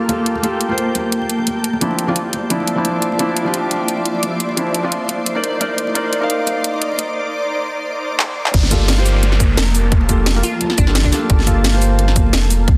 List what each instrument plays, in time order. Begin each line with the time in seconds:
Already playing: ambient pad A#3 G4 A4 G5
0.08 felt piano A#3 F4 G4 A4, closed hi-hat, high bongo, high conga
0.26 closed hi-hat
0.35 high conga
0.43 felt piano A#3 F4 G4 A4, closed hi-hat
0.61 closed hi-hat
0.68 felt piano A#3 F4 G4 C5, high conga
0.78 closed hi-hat
0.95 closed hi-hat, high bongo, high conga
1.12 closed hi-hat
1.22 high conga
1.30 closed hi-hat
1.38 high bongo
1.47 closed hi-hat, high conga
1.64 ambient pad F3 E4 C5 D5, closed hi-hat
1.73 high conga
1.81 felt piano F3 C4 D4 E4, closed hi-hat
1.91 high bongo
1.99 closed hi-hat
2.07 felt piano F3 C4 D4 F4, high conga
2.16 closed hi-hat
2.33 closed hi-hat, high conga
2.50 felt piano F3 C4 D4 E4, closed hi-hat, high bongo
2.60 high conga
2.67 closed hi-hat
2.75 felt piano F3 C4 D4 E4
2.85 closed hi-hat, high bongo, high conga
3.02 closed hi-hat
3.12 high conga
3.19 felt piano F3 C4 D4 E4, closed hi-hat
3.37 closed hi-hat
3.44 felt piano F3 C4 D4 G4, high conga
3.54 closed hi-hat
3.71 closed hi-hat, high bongo, high conga
3.88 closed hi-hat
3.97 high conga
4.05 closed hi-hat
4.15 high bongo
4.23 closed hi-hat, high conga
4.40 closed hi-hat
4.49 high conga
4.57 felt piano F3 C4 D4 E4, closed hi-hat
4.67 high bongo
4.74 closed hi-hat
4.83 felt piano F3 C4 D4 F4, high conga
4.92 closed hi-hat
5.08 ambient pad A#3 D#4 D5, closed hi-hat, high conga
5.26 closed hi-hat, high bongo
5.35 felt piano D#4 A#4 C5 D5, high conga
5.44 closed hi-hat
5.60 felt piano D#4 A#4 C5 D5, closed hi-hat, high bongo, high conga
5.78 closed hi-hat
5.87 high conga
5.95 felt piano D#4 A#4 C5 D5, closed hi-hat
6.13 closed hi-hat
6.21 felt piano D#4 A#4 C5 F5, high conga
6.30 closed hi-hat
6.46 closed hi-hat, high bongo, high conga
6.64 closed hi-hat
6.74 high conga
6.82 closed hi-hat
6.92 high bongo
6.98 closed hi-hat, high conga
8.19 clap
8.46 clap
8.54 sub bass G1, ambient pad F3 A#3 A4, kick, closed hi-hat, downlifter
8.63 snare, high conga
8.70 felt piano A#3 F4 G4 A4, kick, closed hi-hat, shaker
8.88 snare, closed hi-hat
8.96 felt piano A#3 F4 G4 C5, high conga
9.06 open hi-hat, shaker
9.23 closed hi-hat, high bongo, high conga
9.32 snare
9.40 kick, closed hi-hat, shaker
9.49 high conga
9.57 sub bass F1, synth pluck A#4, snare, closed hi-hat
9.67 high bongo
9.75 open hi-hat, high conga, shaker
9.92 kick, closed hi-hat
10.01 high conga
10.08 felt piano A#3 F4 G4 A4, kick, closed hi-hat, shaker
10.18 high bongo
10.26 snare, closed hi-hat
10.35 felt piano A#3 F4 G4 A#4, high conga
10.43 synth pluck F4, open hi-hat, shaker
10.61 closed hi-hat, high conga
10.70 snare
10.78 sub bass G1, synth pluck D4, kick, closed hi-hat, high bongo, shaker
10.86 felt piano A#3 F4 G4 A4, snare, high conga
10.95 snare, closed hi-hat
11.04 synth pluck D4, kick
11.12 felt piano A#3 F4 G4 A4, snare, open hi-hat, high bongo, high conga, shaker
11.30 sub bass G1, kick, closed hi-hat
11.38 snare, high conga
11.46 felt piano A#3 F4 G4 A4, kick, closed hi-hat, shaker
11.64 snare, closed hi-hat
11.72 felt piano A#3 F4 G4 C5, high conga
11.82 open hi-hat, shaker
11.98 closed hi-hat, high bongo, high conga
12.08 snare
12.16 kick, closed hi-hat, shaker
12.27 high conga
12.33 sub bass F1, snare, closed hi-hat
12.42 high bongo
12.50 open hi-hat, high conga, shaker
12.68 sub bass D2, ambient pad F3 C4, kick, closed hi-hat